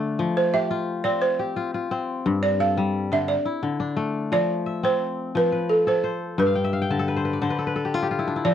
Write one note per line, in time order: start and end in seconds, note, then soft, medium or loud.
0.00 0.24 D3 medium
0.00 1.85 A3 medium
0.00 1.36 D4 medium
0.19 2.31 F3 medium
0.37 0.54 C5 medium
0.54 1.39 G4 medium
0.54 1.07 E5 loud
0.71 1.56 F4 medium
1.04 1.91 C4 medium
1.04 1.21 D5 medium
1.22 1.54 C5 medium
1.39 2.81 G4 medium
1.56 1.74 F4 medium
1.74 3.26 F4 medium
1.91 3.71 C4 medium
2.26 3.34 G2 medium
2.43 2.60 D5 medium
2.60 3.92 A4 medium
2.60 3.13 F5 medium
2.77 3.17 G3 medium
3.12 3.34 D3 medium
3.12 3.28 E5 medium
3.28 3.60 D5 medium
3.45 4.38 E4 medium
3.63 4.37 D3 medium
3.80 5.48 D4 medium
3.97 5.96 A3 medium
4.32 5.34 F3 medium
4.32 4.85 D5 loud
4.66 5.41 E5 medium
4.83 5.58 C4 medium
4.83 5.32 C5 medium
5.35 6.43 F3 medium
5.35 5.71 B4 medium
5.52 6.10 B4 medium
5.70 5.86 A4 medium
5.87 6.99 A4 medium
5.87 6.41 C5 medium
6.04 7.14 C5 medium
6.38 7.47 G2 medium
6.38 7.38 B4 medium
6.47 6.70 F5 medium
6.55 6.81 G5 medium
6.64 7.68 E5 medium
6.73 7.73 F5 medium
6.82 7.75 G5 medium
6.90 7.41 D3 medium
6.90 7.78 A5 medium
6.99 7.58 A4 medium
7.08 7.25 B4 medium
7.16 7.41 C5 medium
7.25 7.48 B4 medium
7.33 8.44 D5 medium
7.42 8.50 D3 medium
7.42 7.73 C5 medium
7.50 7.66 B4 medium
7.59 7.75 A4 medium
7.67 8.54 B4 medium
7.76 8.54 A4 medium
7.85 8.02 G4 medium
7.94 8.11 F4 medium
8.03 8.54 G4 medium
8.11 8.42 F4 medium
8.19 8.36 E4 medium
8.27 8.54 D4 medium
8.36 8.54 E4 medium
8.45 8.54 F3 medium
8.45 8.54 D5 loud